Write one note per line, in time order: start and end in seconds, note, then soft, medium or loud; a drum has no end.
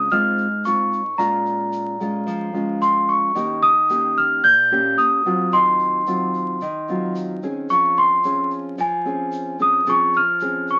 0.00 0.12 D#6 medium
0.11 1.17 G#2 medium
0.11 0.46 G#3 soft
0.11 0.46 C4 medium
0.11 0.46 F4 medium
0.11 0.61 F6 medium
0.11 shaker medium
0.38 shaker soft
0.65 1.00 G#3 soft
0.65 1.00 C4 soft
0.65 1.00 F4 medium
0.65 1.21 C#6 medium
0.65 shaker medium
0.93 shaker soft
1.18 2.24 A#2 medium
1.18 1.95 G#3 soft
1.18 1.96 C#4 soft
1.18 1.96 F4 medium
1.18 2.86 A#5 medium
1.18 shaker medium
1.46 shaker soft
1.73 shaker medium
2.00 2.50 G#3 medium
2.00 2.50 C#4 medium
2.00 2.50 F4 medium
2.00 shaker soft
2.27 3.32 F3 medium
2.27 shaker medium
2.54 3.33 G#3 soft
2.54 3.33 C#4 medium
2.54 3.33 F4 medium
2.54 shaker soft
2.82 3.09 C6 medium
2.82 shaker medium
3.09 3.64 C#6 medium
3.09 shaker soft
3.35 4.41 D#3 medium
3.35 3.70 A#3 soft
3.35 3.70 C#4 soft
3.35 3.70 G4 medium
3.35 shaker medium
3.62 4.18 D#6 medium
3.62 shaker soft
3.90 4.43 A#3 soft
3.90 4.44 C#4 soft
3.90 4.44 G4 medium
3.90 shaker medium
4.18 4.45 F6 medium
4.18 shaker soft
4.44 4.95 A#2 medium
4.44 4.99 G6 loud
4.44 shaker medium
4.71 5.21 A#3 soft
4.71 5.21 C#4 soft
4.71 5.21 G4 medium
4.71 shaker soft
4.98 5.54 D#6 medium
4.98 shaker medium
5.26 6.02 F#3 soft
5.26 6.03 C4 medium
5.26 6.03 F4 medium
5.26 shaker soft
5.53 6.58 D#3 medium
5.53 7.11 C6 medium
5.53 shaker medium
5.80 shaker soft
6.07 6.60 F#3 soft
6.07 6.61 C4 medium
6.07 6.61 F4 medium
6.07 shaker medium
6.34 shaker soft
6.61 7.67 D#3 medium
6.61 shaker medium
6.88 7.38 F#3 medium
6.88 7.38 C4 soft
6.88 7.39 F4 medium
6.88 shaker soft
7.16 shaker medium
7.43 8.20 C4 medium
7.43 8.20 C#4 soft
7.43 8.20 G#4 medium
7.43 shaker soft
7.69 8.76 F3 medium
7.69 7.98 C#6 loud
7.69 shaker medium
7.97 8.48 C6 medium
7.97 shaker soft
8.24 8.78 C4 soft
8.24 8.78 C#4 medium
8.24 8.78 G#4 medium
8.24 shaker medium
8.51 shaker soft
8.78 9.84 F3 medium
8.78 9.57 G#5 medium
8.78 shaker soft
9.05 9.55 C4 soft
9.05 9.55 C#4 soft
9.05 9.55 G#4 soft
9.05 shaker soft
9.32 shaker medium
9.59 9.82 C4 medium
9.59 9.82 C#4 medium
9.59 9.83 G#4 medium
9.59 9.88 D#6 medium
9.59 shaker soft
9.86 10.79 F3 medium
9.86 10.22 C4 medium
9.86 10.22 C#4 soft
9.86 10.22 G#4 medium
9.86 10.16 C#6 medium
9.86 shaker medium
10.14 10.66 F6 medium
10.14 shaker soft
10.40 10.79 C4 soft
10.40 10.79 C#4 soft
10.40 10.79 G#4 medium
10.40 shaker medium
10.68 10.79 C#6 medium
10.68 shaker soft